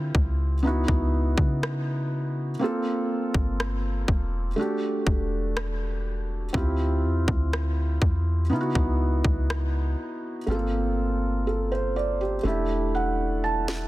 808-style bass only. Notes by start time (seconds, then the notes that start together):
Already playing: D3
0.15 C#2
0.88 C#2
1.38 C#3
3.35 G1
4.08 E1
5.07 E1
6.54 D2
7.04 E2
8.02 E2
8.51 C#3
8.75 C#2
9.25 C#2
10.48 G1
12.44 E1